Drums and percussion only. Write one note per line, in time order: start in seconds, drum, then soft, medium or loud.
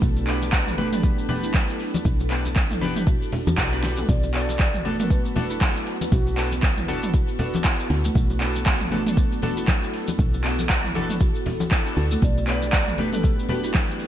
0.02 kick loud
0.02 closed hi-hat soft
0.02 low conga medium
0.02 maracas medium
0.17 muted conga medium
0.17 maracas soft
0.27 clap medium
0.27 open hi-hat medium
0.42 closed hi-hat medium
0.42 muted conga soft
0.42 maracas medium
0.52 kick loud
0.52 clap loud
0.52 closed hi-hat soft
0.52 maracas medium
0.67 mid tom medium
0.67 maracas soft
0.78 open hi-hat medium
0.78 muted conga soft
0.78 high conga medium
0.93 closed hi-hat medium
0.93 mid tom loud
0.93 maracas medium
1.03 kick loud
1.03 closed hi-hat soft
1.03 muted conga soft
1.03 maracas medium
1.18 maracas soft
1.29 open hi-hat medium
1.29 muted conga medium
1.29 high conga medium
1.29 low conga loud
1.44 closed hi-hat medium
1.44 maracas medium
1.54 kick loud
1.54 clap loud
1.54 closed hi-hat soft
1.54 muted conga soft
1.54 high conga medium
1.54 maracas medium
1.70 maracas soft
1.80 open hi-hat medium
1.94 closed hi-hat medium
1.94 muted conga soft
1.94 high conga loud
1.94 maracas medium
2.05 kick loud
2.05 closed hi-hat soft
2.05 low conga medium
2.05 maracas medium
2.20 muted conga medium
2.20 maracas soft
2.30 clap medium
2.30 open hi-hat medium
2.45 closed hi-hat medium
2.45 muted conga soft
2.45 high conga medium
2.45 maracas medium
2.56 kick loud
2.56 clap loud
2.56 closed hi-hat soft
2.56 maracas medium
2.71 mid tom medium
2.71 maracas soft
2.81 open hi-hat medium
2.81 muted conga soft
2.81 high conga medium
2.96 closed hi-hat medium
2.96 mid tom loud
2.96 maracas medium
3.07 kick loud
3.07 closed hi-hat soft
3.07 muted conga soft
3.07 low conga medium
3.07 maracas medium
3.22 maracas soft
3.32 open hi-hat medium
3.32 muted conga medium
3.32 high conga medium
3.32 low conga loud
3.47 closed hi-hat medium
3.47 high conga loud
3.47 maracas medium
3.58 kick loud
3.58 clap loud
3.58 closed hi-hat soft
3.58 maracas medium
3.72 maracas soft
3.83 snare medium
3.83 open hi-hat medium
3.97 closed hi-hat medium
3.97 mid tom medium
3.97 muted conga medium
3.97 maracas medium
4.09 kick loud
4.09 closed hi-hat soft
4.09 low conga medium
4.09 maracas medium
4.23 muted conga medium
4.23 maracas soft
4.34 clap medium
4.34 open hi-hat loud
4.49 closed hi-hat medium
4.49 muted conga soft
4.49 maracas medium
4.59 kick loud
4.59 clap loud
4.59 closed hi-hat soft
4.59 maracas medium
4.74 mid tom medium
4.74 maracas soft
4.85 open hi-hat medium
4.85 muted conga medium
4.85 high conga medium
5.00 closed hi-hat medium
5.00 mid tom loud
5.00 maracas medium
5.10 kick loud
5.10 closed hi-hat soft
5.10 muted conga soft
5.10 maracas medium
5.25 maracas soft
5.36 open hi-hat medium
5.36 muted conga medium
5.36 high conga medium
5.36 low conga loud
5.50 closed hi-hat medium
5.50 maracas medium
5.61 kick loud
5.61 clap loud
5.61 closed hi-hat soft
5.61 muted conga soft
5.61 high conga medium
5.61 maracas medium
5.77 maracas soft
5.87 open hi-hat medium
6.01 closed hi-hat medium
6.01 muted conga medium
6.01 high conga medium
6.01 maracas medium
6.12 kick loud
6.12 closed hi-hat soft
6.12 low conga loud
6.12 maracas medium
6.27 muted conga medium
6.27 maracas soft
6.38 clap medium
6.38 open hi-hat loud
6.52 closed hi-hat medium
6.52 muted conga soft
6.52 high conga medium
6.52 maracas medium
6.63 kick loud
6.63 clap loud
6.63 closed hi-hat soft
6.63 maracas medium
6.77 mid tom medium
6.77 maracas soft
6.88 open hi-hat medium
6.88 muted conga medium
6.88 high conga loud
7.03 closed hi-hat medium
7.03 mid tom medium
7.03 maracas medium
7.13 kick loud
7.13 closed hi-hat soft
7.13 muted conga soft
7.13 maracas medium
7.28 maracas soft
7.39 open hi-hat medium
7.39 muted conga medium
7.39 high conga medium
7.39 low conga loud
7.54 closed hi-hat medium
7.54 high conga loud
7.54 maracas medium
7.64 kick loud
7.64 clap loud
7.64 closed hi-hat soft
7.64 muted conga soft
7.64 maracas medium
7.80 maracas soft
7.90 open hi-hat medium
8.05 closed hi-hat medium
8.05 muted conga medium
8.05 maracas loud
8.15 kick loud
8.15 closed hi-hat soft
8.15 low conga medium
8.15 maracas medium
8.30 muted conga medium
8.30 maracas soft
8.41 clap medium
8.41 open hi-hat medium
8.56 closed hi-hat medium
8.56 muted conga soft
8.56 maracas medium
8.66 kick loud
8.66 clap loud
8.66 closed hi-hat soft
8.66 maracas medium
8.81 mid tom medium
8.81 maracas soft
8.91 open hi-hat medium
8.91 muted conga soft
8.91 high conga medium
9.07 closed hi-hat medium
9.07 mid tom medium
9.07 maracas medium
9.17 kick loud
9.17 closed hi-hat soft
9.17 muted conga soft
9.17 maracas medium
9.32 maracas soft
9.42 open hi-hat medium
9.42 muted conga medium
9.42 high conga medium
9.42 low conga loud
9.57 closed hi-hat medium
9.57 maracas medium
9.68 kick loud
9.68 clap loud
9.68 closed hi-hat soft
9.68 muted conga soft
9.68 high conga loud
9.68 maracas medium
9.83 maracas soft
9.93 open hi-hat medium
10.08 closed hi-hat medium
10.08 muted conga medium
10.08 high conga medium
10.08 maracas loud
10.18 kick loud
10.18 closed hi-hat soft
10.18 low conga medium
10.18 maracas medium
10.34 muted conga medium
10.34 maracas soft
10.44 clap medium
10.44 open hi-hat medium
10.59 closed hi-hat medium
10.59 muted conga soft
10.59 high conga medium
10.59 maracas medium
10.70 kick loud
10.70 clap loud
10.70 closed hi-hat soft
10.70 maracas medium
10.84 mid tom medium
10.84 maracas soft
10.95 open hi-hat medium
10.95 muted conga soft
10.95 high conga loud
11.10 closed hi-hat medium
11.10 mid tom medium
11.10 maracas medium
11.20 kick loud
11.20 closed hi-hat soft
11.20 muted conga soft
11.20 maracas medium
11.35 maracas soft
11.46 open hi-hat medium
11.46 muted conga medium
11.46 high conga medium
11.46 low conga loud
11.60 closed hi-hat medium
11.60 high conga loud
11.60 maracas medium
11.71 kick loud
11.71 clap loud
11.71 closed hi-hat soft
11.71 muted conga soft
11.71 maracas medium
11.87 maracas soft
11.97 open hi-hat medium
12.11 closed hi-hat medium
12.11 muted conga soft
12.11 maracas medium
12.22 kick loud
12.22 closed hi-hat soft
12.22 low conga medium
12.22 maracas medium
12.38 muted conga soft
12.38 maracas soft
12.47 clap medium
12.47 open hi-hat medium
12.62 closed hi-hat medium
12.62 muted conga soft
12.62 maracas medium
12.73 kick loud
12.73 clap loud
12.73 closed hi-hat soft
12.73 maracas medium
12.88 mid tom medium
12.88 maracas soft
12.98 open hi-hat medium
12.98 muted conga soft
12.98 high conga medium
13.13 closed hi-hat medium
13.13 mid tom loud
13.13 maracas medium
13.23 kick loud
13.23 closed hi-hat soft
13.23 muted conga soft
13.23 maracas medium
13.39 maracas soft
13.49 open hi-hat medium
13.49 muted conga medium
13.49 high conga medium
13.49 low conga loud
13.64 closed hi-hat medium
13.64 maracas medium
13.74 kick loud
13.74 clap loud
13.74 closed hi-hat soft
13.74 muted conga soft
13.74 high conga loud
13.74 maracas medium
13.91 maracas soft
14.00 open hi-hat medium